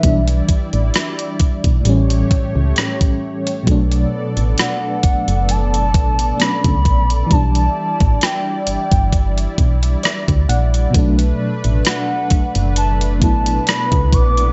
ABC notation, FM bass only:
X:1
M:4/4
L:1/16
Q:"Swing 16ths" 1/4=66
K:Bm
V:1 name="FM bass" clef=bass
B,,,2 z A,,, z2 B,,, B,,, A,,,2 C,, C,, z4 | B,,,2 z A,,, z2 F,,, F,,,3 A,,,2 z C,, ^A,,,2 | B,,,2 z A,,, z2 G,,, G,,,3 B,,,2 z D,, ^A,,,2 | B,,,2 z A,,, z2 F,,, F,,,3 A,,,2 z C,, ^A,,,2 |]